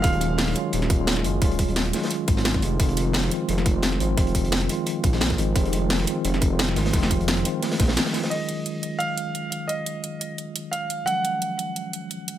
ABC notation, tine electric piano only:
X:1
M:4/4
L:1/16
Q:"Swing 16ths" 1/4=174
K:Ebdor
V:1 name="Tine electric piano" clef=bass
[E,G,A,DF]6 [E,G,A,DF]4- [E,G,A,DF] [E,G,A,DF]3 [E,G,A,DF]2 | [E,G,A,DF]6 [E,G,A,DF]4- [E,G,A,DF] [E,G,A,DF]3 [E,F,A,CF]2 | [E,F,A,CF]6 [E,F,A,CF]4- [E,F,A,CF] [E,F,A,CF]3 [E,F,A,CF]2 | [E,F,A,CF]6 [E,F,A,CF]4- [E,F,A,CF] [E,F,A,CF]3 [E,F,A,CF]2 |
[E,F,A,CF]6 [E,F,A,CF]4- [E,F,A,CF] [E,F,A,CF]3 [E,F,A,CF]2 | [E,F,A,CF]6 [E,F,A,CF]4 [E,F,A,CA]4 [E,F,A,CF]2 | [E,G,A,DF]16- | [E,G,A,DF]16 |
[E,F,G,A,D]16 |]